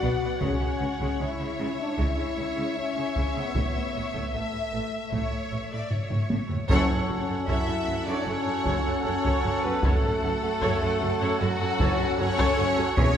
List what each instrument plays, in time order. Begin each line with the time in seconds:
Already playing: french horn section F#4, violin section D5 F#5
0.01 double bass section B1, cello section B2, viola section B3, taiko
0.21 cello section B2, viola section B3
0.40 double bass section C#2, cello section C#3, viola section G#3, french horn section C#4, violin section C#5, taiko
0.60 cello section C#3, viola section G#3
0.80 double bass section C#2, cello section C#3, viola section G#3
1.00 cello section C#3, viola section G#3, taiko
1.20 double bass section C#2, cello section C#3, viola section G#3, french horn section E4, violin section E5
1.39 cello section C#3, viola section G#3
1.58 double bass section C#2, cello section C#3, viola section G#3
1.81 french horn section D4
1.97 double bass section C#2, cello section C#3, viola section G#3, french horn section E4, taiko
2.16 cello section C#3, viola section G#3
2.36 double bass section C#2, cello section C#3, viola section G#3
2.56 cello section C#3, viola section G#3
2.77 french horn section C#4
2.95 cello section C#3, viola section G#3
3.14 double bass section C#2, cello section C#3, viola section G#3, taiko
3.35 cello section C#3, viola section G#3, french horn section B3
3.54 double bass section A1, cello section A2, viola section A3, french horn section B3, taiko
3.73 cello section A2, viola section A3
3.93 double bass section A1, cello section A2, viola section A3
4.13 cello section A2, viola section A3, taiko
4.33 double bass section A1, cello section A2, viola section A3, french horn section A3, violin section E5
4.52 cello section A2, viola section A3
4.72 double bass section A1, cello section A2, viola section A3
5.11 double bass section A1, cello section A2, viola section A3, violin section C#5, taiko
5.32 cello section A2, viola section A3
5.51 double bass section A1, cello section A2, viola section A3
5.70 cello section A2, viola section A3, violin section D5
5.91 violin section C#5, taiko low-mid
6.09 cello section A2, viola section A3, taiko low-mid
6.29 double bass section A1, cello section A2, viola section A3, taiko high
6.49 cello section A2, viola section A3, taiko low
6.68 double bass section F#1, cello section F#2, timpani F#2, trombone section F#3 C#4, french horn section C#4, viola section A4 C#5, trumpet A4, violin section C#5 F#5, taiko
6.89 cello section F#2, viola section A4, taiko low-mid
7.09 double bass section F#1, cello section F#2, viola section F#4 A4
7.28 cello section F#2, viola section A4
7.47 double bass section F#1, cello section F#2, french horn section E4, viola section A4 C#5, violin section E5, taiko
7.68 cello section F#2, viola section A4
7.87 double bass section F#1, cello section F#2, viola section F#4 A4
8.07 cello section F#2, french horn section D4, viola section A4 C#5, violin section D5
8.25 double bass section F#1, cello section F#2, french horn section C#4, viola section A4, violin section C#5
8.46 cello section F#2, viola section F#4 A4
8.65 double bass section F#1, cello section F#2, viola section A4 C#5, taiko
8.86 cello section F#2, viola section A4
9.04 double bass section F#1, cello section F#2, french horn section C#4, viola section F#4 A4, violin section C#5
9.24 cello section F#2, viola section A4 C#5, taiko
9.43 double bass section F#1, cello section F#2, viola section A4
9.63 cello section F#2, french horn section B3, viola section F#4 A4, violin section B4
9.83 double bass section F#1, cello section F#2, trombone section F#3 C#4, french horn section A3, viola section A4 C#5, violin section A4 F#5, trumpet A4, taiko
10.03 cello section F#2, viola section A4, taiko low-mid
10.22 double bass section F#1, cello section F#2, viola section F#4 A4
10.41 cello section F#2, viola section A4
10.62 double bass section F#1, cello section F#2, viola section A4 C#5, taiko
10.81 cello section F#2, viola section A4
11.01 double bass section F#1, cello section F#2, viola section F#4 A4
11.20 cello section F#2, viola section A4 C#5
11.40 double bass section F#1, cello section F#2, french horn section F#3, violin section F#4, viola section A4
11.60 cello section F#2, viola section F#4 A4
11.79 double bass section F#1, cello section F#2, viola section A4 C#5, taiko
11.99 cello section F#2, viola section A4
12.18 double bass section F#1, cello section F#2, french horn section C#4, viola section F#4 A4, violin section C#5
12.38 cello section F#2, viola section A4 C#5, taiko
12.57 double bass section F#1, cello section F#2, viola section A4
12.77 cello section F#2, viola section F#4 A4
12.96 double bass section E1, cello section E2, trombone section E3, french horn section C#4, viola section G#4 C#5, trumpet G#4, violin section C#5 G#5, taiko